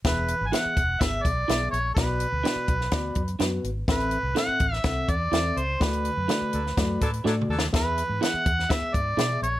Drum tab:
HH |x-----x-----x-----x-----x-----x-----x-----x-----|x-----x-----x-----x-----x-----x--x--x-----x-----|x--x--x-----x-----x-----x-----x-----x-----x-----|x--x--x-----x-----x-----x-----x--x--------------|
SD |o-----------o-----------o-----------o-----------|o-----------o--------o--o-----------o-----------|o-----------o--------o--o-----------o-----------|o-----------o--------o--o-----------o-------o---|
T2 |------------------------------------------------|------------------------------------------------|------------------------------------------------|----------------------------------------o-------|
BD |o-----------------o-----o-----o-----------------|o-----------------o-----o-----o-----------------|o-----------------o-----o-----o-----------------|o-----------------------o-----o-----------------|

HH |x-----x-----x-----x-----x-----x-----x-----x-----|
SD |o-----------o--------o--o-----------o-----------|
T2 |------------------------------------------------|
BD |o-----------------o-----o-----o-----------------|